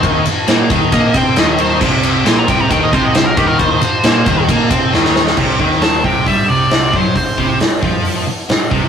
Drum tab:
CC |----------------|x---------------|----------------|x---------------|
RD |x-x-x-x-x-x-x-x-|--x-x-x-x-x-x-x-|x-x-x-x-x-x-----|----------------|
HH |----------------|----------------|----------------|----o---o---o---|
SD |----o-------o---|----o-------o---|----o-------oooo|---oo-------o---|
BD |o-----o-o-o-----|o-----o-o-o---o-|o-----o-o-o-----|o-o---o-o-----o-|

CC |----------------|
RD |----------------|
HH |o---o---o---o---|
SD |----o-------o---|
BD |o-o---o-------o-|